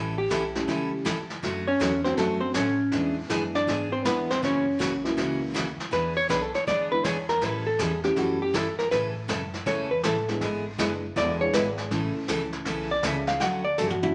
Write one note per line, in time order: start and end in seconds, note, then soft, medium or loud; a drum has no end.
0.00 0.29 A1 medium
0.00 0.15 E3 medium
0.00 0.15 G3 medium
0.00 0.15 C#4 medium
0.00 0.16 E4 medium
0.00 0.16 A4 medium
0.00 0.14 B4 medium
0.18 0.65 G4 medium
0.30 0.67 B1 loud
0.30 0.42 E3 medium
0.30 0.42 G3 medium
0.30 0.42 C#4 medium
0.30 0.43 E4 medium
0.30 0.43 A4 medium
0.30 kick soft
0.30 snare medium
0.30 hi-hat pedal medium
0.55 1.03 G3 medium
0.55 1.03 A3 medium
0.55 1.03 C#4 medium
0.55 1.03 E4 medium
0.55 1.03 G4 medium
0.55 snare soft
0.68 1.04 C#2 medium
0.68 0.90 E3 medium
0.68 0.90 G3 medium
0.68 0.90 C#4 medium
0.68 0.90 E4 medium
0.68 0.91 A4 medium
0.68 brush sweep medium
0.68 kick soft
0.68 snare soft
1.05 1.42 D2 loud
1.05 1.17 E3 medium
1.05 1.17 G3 medium
1.05 1.17 C#4 medium
1.05 1.17 E4 medium
1.05 1.17 A4 medium
1.05 kick soft
1.05 snare medium
1.05 hi-hat pedal medium
1.30 snare soft
1.42 1.79 F#2 medium
1.42 1.65 D3 medium
1.42 1.65 F#3 medium
1.42 1.65 A3 medium
1.42 1.65 C#4 medium
1.42 1.65 F#4 medium
1.42 brush sweep soft
1.42 kick soft
1.42 snare soft
1.67 2.03 C#4 medium
1.67 2.02 C#5 medium
1.80 2.16 E2 medium
1.80 1.92 D3 medium
1.80 1.92 F#3 medium
1.80 1.92 A3 medium
1.80 1.92 C#4 medium
1.80 1.92 F#4 medium
1.80 kick soft
1.80 snare medium
1.80 hi-hat pedal medium
2.04 2.52 F#3 medium
2.04 2.53 A3 medium
2.04 2.17 C4 medium
2.04 2.52 C#4 medium
2.04 2.53 D4 medium
2.04 2.53 F#4 medium
2.04 2.17 C5 medium
2.04 snare soft
2.17 2.54 F#2 medium
2.17 2.40 D3 medium
2.17 2.40 F#3 medium
2.17 2.42 A3 soft
2.17 2.40 A3 medium
2.17 2.40 C#4 medium
2.17 2.40 F#4 medium
2.17 2.40 A4 medium
2.17 brush sweep medium
2.17 kick soft
2.17 snare soft
2.41 2.54 C4 medium
2.41 2.54 C5 medium
2.54 2.91 A2 medium
2.54 2.67 D3 medium
2.54 2.67 F#3 medium
2.54 2.67 A3 medium
2.54 2.67 C#4 medium
2.54 3.13 C#4 medium
2.54 2.67 F#4 medium
2.54 3.13 C#5 medium
2.54 kick soft
2.54 snare medium
2.54 hi-hat pedal medium
2.92 3.28 E2 medium
2.92 3.14 E3 medium
2.92 3.14 G#3 medium
2.92 3.14 B3 medium
2.92 3.15 B3 medium
2.92 3.15 D4 medium
2.92 3.15 E4 medium
2.92 3.15 G#4 medium
2.92 brush sweep medium
2.92 kick soft
2.92 snare soft
3.29 3.66 F#2 medium
3.29 3.86 E3 medium
3.29 3.42 E3 medium
3.29 3.87 G#3 medium
3.29 3.87 B3 medium
3.29 3.42 B3 medium
3.29 3.87 D4 medium
3.29 3.42 D4 medium
3.29 3.87 E4 medium
3.29 3.42 G#4 medium
3.29 kick soft
3.29 snare medium
3.29 hi-hat pedal medium
3.55 3.90 D4 medium
3.55 3.90 D5 loud
3.55 snare soft
3.67 4.04 G#2 medium
3.67 3.89 E3 medium
3.67 3.90 B3 medium
3.67 3.90 D4 medium
3.67 3.90 G#4 medium
3.67 brush sweep soft
3.67 kick soft
3.67 snare medium
3.92 4.05 C4 medium
3.92 4.04 C5 medium
4.04 4.41 E2 medium
4.04 4.27 E3 medium
4.04 4.17 E3 medium
4.04 4.27 G#3 medium
4.04 4.27 B3 medium
4.04 4.17 B3 medium
4.04 4.30 B3 medium
4.04 4.27 D4 medium
4.04 4.17 D4 medium
4.04 4.27 E4 medium
4.04 4.17 G#4 medium
4.04 4.29 B4 medium
4.04 kick soft
4.04 snare medium
4.04 hi-hat pedal medium
4.30 4.42 C4 medium
4.30 4.42 C5 medium
4.30 snare soft
4.42 4.79 F#2 medium
4.42 4.65 C#3 medium
4.42 4.65 E3 medium
4.42 4.65 A#3 medium
4.42 4.65 C#4 medium
4.42 5.02 C#4 medium
4.42 4.65 F#4 medium
4.42 5.02 C#5 medium
4.42 brush sweep soft
4.42 kick soft
4.42 snare soft
4.79 5.16 B1 medium
4.79 4.91 C#3 medium
4.79 4.91 E3 medium
4.79 4.91 A#3 medium
4.79 4.92 C#4 medium
4.79 4.92 F#4 medium
4.79 kick soft
4.79 snare medium
4.79 hi-hat pedal medium
5.04 5.52 E3 medium
5.04 5.52 F#3 medium
5.04 5.52 A#3 medium
5.04 5.52 C#4 medium
5.04 5.52 E4 medium
5.04 snare soft
5.17 5.54 C#2 loud
5.17 5.39 C#3 medium
5.17 5.39 E3 medium
5.17 5.40 A#3 medium
5.17 5.40 C#4 medium
5.17 5.40 F#4 medium
5.17 brush sweep medium
5.17 kick soft
5.17 snare medium
5.54 5.78 D2 loud
5.54 5.66 C#3 medium
5.54 5.66 E3 medium
5.54 5.66 A#3 medium
5.54 5.66 C#4 medium
5.54 5.67 F#4 medium
5.54 kick soft
5.54 snare medium
5.54 hi-hat pedal medium
5.80 muted upright bass stroke soft
5.80 snare soft
5.91 6.29 E2 medium
5.91 6.14 E3 medium
5.91 6.14 B3 medium
5.91 6.14 D4 medium
5.91 6.14 G#4 medium
5.91 6.16 B4 medium
5.91 brush sweep medium
5.91 kick soft
5.91 snare soft
6.17 6.29 C#5 loud
6.29 6.52 B1 medium
6.29 6.41 E3 medium
6.29 6.41 B3 medium
6.29 6.41 D4 medium
6.29 6.42 G#4 medium
6.29 6.42 B4 medium
6.29 kick soft
6.29 snare medium
6.29 hi-hat pedal soft
6.42 6.54 A4 medium
6.54 6.67 C#5 medium
6.54 muted upright bass stroke soft
6.54 snare soft
6.67 7.03 D2 medium
6.67 6.89 E3 medium
6.67 6.90 B3 medium
6.67 6.90 D4 medium
6.67 6.90 G#4 medium
6.67 6.91 D5 loud
6.67 brush sweep medium
6.67 kick soft
6.67 snare soft
6.91 7.03 E3 medium
6.91 7.03 G#3 medium
6.91 7.03 B3 medium
6.91 7.03 D4 medium
6.91 7.03 E4 medium
6.91 7.06 B4 loud
7.04 7.41 E2 loud
7.04 7.16 E3 medium
7.04 7.16 B3 medium
7.04 7.17 D4 medium
7.04 7.17 G#4 medium
7.04 7.29 C#5 loud
7.04 kick soft
7.04 snare medium
7.04 hi-hat pedal medium
7.29 7.44 A#4 loud
7.29 snare soft
7.41 7.78 A2 medium
7.41 7.64 E3 medium
7.41 7.64 G3 medium
7.41 7.64 C#4 medium
7.41 7.65 E4 medium
7.41 7.65 A4 medium
7.41 7.67 B4 loud
7.41 brush sweep soft
7.41 kick soft
7.41 snare soft
7.67 7.81 A4 medium
7.79 8.15 E2 loud
7.79 7.91 E3 medium
7.79 7.91 G3 medium
7.79 7.91 C#4 medium
7.79 7.91 E4 medium
7.79 8.04 G#4 medium
7.79 7.92 A4 medium
7.79 kick soft
7.79 snare medium
7.79 hi-hat pedal medium
8.03 8.51 E3 medium
8.03 8.51 A3 medium
8.03 8.52 C#4 medium
8.03 8.52 E4 medium
8.03 8.52 G4 medium
8.03 8.18 G4 medium
8.03 snare soft
8.16 8.53 F#2 medium
8.16 8.39 E3 medium
8.16 8.39 G3 medium
8.16 8.39 C#4 medium
8.16 8.39 E4 medium
8.16 8.41 F#4 medium
8.16 8.39 A4 medium
8.16 brush sweep medium
8.16 kick soft
8.16 snare medium
8.42 8.55 G4 medium
8.54 8.77 G2 medium
8.54 8.66 E3 medium
8.54 8.66 G3 medium
8.54 8.66 C#4 medium
8.54 8.66 E4 medium
8.54 8.66 A4 medium
8.54 8.78 A4 medium
8.54 kick soft
8.54 snare medium
8.54 hi-hat pedal medium
8.78 8.91 A#4 medium
8.78 muted upright bass stroke soft
8.78 snare soft
8.91 9.28 A2 medium
8.91 9.14 C#3 medium
8.91 9.14 E3 medium
8.91 9.14 A3 medium
8.91 9.14 C#4 medium
8.91 9.14 A4 medium
8.91 9.06 B4 loud
8.91 brush sweep soft
8.91 kick soft
8.91 snare soft
9.28 9.65 F#2 medium
9.28 9.40 C#3 medium
9.28 9.41 E3 medium
9.28 9.41 A3 medium
9.28 9.41 C#4 medium
9.28 9.41 A4 medium
9.28 kick soft
9.28 snare medium
9.28 hi-hat pedal soft
9.54 snare soft
9.66 10.03 E2 medium
9.66 9.88 C#3 medium
9.66 9.88 E3 medium
9.66 9.89 A3 medium
9.66 9.89 C#4 medium
9.66 9.89 A4 medium
9.66 9.90 C#5 medium
9.66 brush sweep soft
9.66 kick soft
9.66 snare medium
9.91 10.03 B4 medium
10.03 10.40 A1 medium
10.03 10.16 C#3 medium
10.03 10.16 E3 medium
10.03 10.16 A3 medium
10.03 10.16 C#4 medium
10.03 10.16 A4 medium
10.03 10.28 A4 medium
10.03 kick soft
10.03 snare medium
10.03 hi-hat pedal medium
10.28 10.40 G#3 medium
10.28 10.40 B3 medium
10.28 10.40 D4 medium
10.28 10.40 E4 medium
10.28 10.40 G#4 medium
10.28 snare soft
10.41 10.77 G#1 medium
10.41 10.63 D3 medium
10.41 10.64 G#3 medium
10.41 10.64 B3 medium
10.41 10.64 E4 medium
10.41 10.64 G#4 medium
10.41 brush sweep medium
10.41 kick soft
10.41 snare soft
10.78 11.15 F#1 medium
10.78 10.90 D3 medium
10.78 10.90 G#3 medium
10.78 11.01 G#3 medium
10.78 11.01 B3 medium
10.78 10.91 B3 medium
10.78 11.01 D4 medium
10.78 11.01 E4 medium
10.78 10.91 E4 medium
10.78 10.91 G#4 medium
10.78 11.01 G#4 medium
10.78 kick soft
10.78 snare medium
10.78 hi-hat pedal medium
11.16 11.52 E1 loud
11.16 11.38 D3 medium
11.16 11.38 G#3 medium
11.16 11.39 B3 medium
11.16 11.39 E4 medium
11.16 11.39 G#4 medium
11.16 11.41 D5 loud
11.16 brush sweep medium
11.16 kick soft
11.16 snare soft
11.40 11.52 G#3 medium
11.40 11.52 B3 medium
11.40 11.52 D4 medium
11.40 11.52 E4 medium
11.40 11.52 G#4 medium
11.40 11.53 C#5 loud
11.53 11.90 G#1 loud
11.53 11.65 D3 medium
11.53 11.65 G#3 medium
11.53 11.65 B3 medium
11.53 11.66 E4 medium
11.53 11.66 G#4 medium
11.53 11.69 B4 loud
11.53 kick soft
11.53 snare medium
11.53 hi-hat pedal medium
11.77 snare soft
11.91 12.14 A1 medium
11.91 12.13 C#3 medium
11.91 12.95 E3 medium
11.91 12.13 E3 medium
11.91 12.95 A3 medium
11.91 12.13 A3 medium
11.91 12.95 C#4 medium
11.91 12.13 C#4 medium
11.91 12.95 E4 medium
11.91 12.96 A4 medium
11.91 12.14 A4 medium
11.91 brush sweep medium
11.91 kick soft
11.91 snare soft
12.15 muted upright bass stroke soft
12.28 12.64 C#2 medium
12.28 12.40 C#3 medium
12.28 12.41 E3 medium
12.28 12.41 A3 medium
12.28 12.41 C#4 medium
12.28 12.41 A4 medium
12.28 kick soft
12.28 snare medium
12.28 hi-hat pedal medium
12.53 snare soft
12.65 13.02 B1 medium
12.65 12.88 C#3 medium
12.65 12.88 E3 medium
12.65 12.89 A3 medium
12.65 12.89 C#4 medium
12.65 12.89 A4 medium
12.65 brush sweep medium
12.65 kick soft
12.65 snare medium
12.91 13.05 D5 medium
13.03 13.39 C#2 loud
13.03 13.15 C#3 medium
13.03 13.15 E3 medium
13.03 13.15 A3 medium
13.03 13.15 C#4 medium
13.03 13.16 A4 medium
13.03 13.28 E5 medium
13.03 kick soft
13.03 snare medium
13.03 hi-hat pedal medium
13.27 13.41 F5 loud
13.27 snare soft
13.40 13.77 D2 medium
13.40 13.63 D3 medium
13.40 13.63 F#3 medium
13.40 13.63 A3 medium
13.40 13.63 C#4 medium
13.40 13.63 F#4 medium
13.40 13.64 F#5 loud
13.40 brush sweep soft
13.40 kick soft
13.40 snare medium
13.65 13.77 D5 medium
13.78 14.14 G2 loud
13.78 13.90 D3 medium
13.78 13.90 F#3 medium
13.78 13.90 A3 medium
13.78 13.90 C#4 medium
13.78 13.90 F#4 medium
13.78 13.91 A4 medium
13.78 hi-hat pedal medium
13.78 high tom soft
13.90 14.03 F#4 medium
13.90 high tom medium
14.02 14.15 F#3 medium
14.02 14.15 A3 medium
14.02 14.15 C#4 medium
14.02 14.15 D4 medium
14.02 14.15 E4 medium
14.02 14.15 F#4 medium
14.02 high tom medium